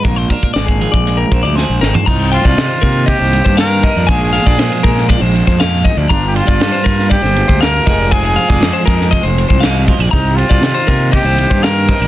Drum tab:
CC |----------------|x---------------|----------------|----------------|
RD |----------------|--x-x-x-x-x-x-x-|x-x-x-x-x-x-x-x-|x-x-x-x-x-x-x-x-|
HH |x-x-x-x-x-x-----|----------------|----------------|----------------|
SD |----o-------o-o-|----o-------o---|----o--o---oo---|----o--o-o--o---|
FT |---------------o|----------------|----------------|----------------|
BD |o-oo-o-o--o-----|o--o--o-o--o--o-|o--o--o-o--o--o-|o--o--o-o--o--o-|

CC |----------------|----------------|
RD |x-x-x-x-x-x-x-x-|x-x-x-x-x-x-x-x-|
HH |----------------|----------------|
SD |----o--o----o---|----o-------o---|
FT |----------------|----------------|
BD |o--o--o-o--o--o-|o--o--o-o--o--o-|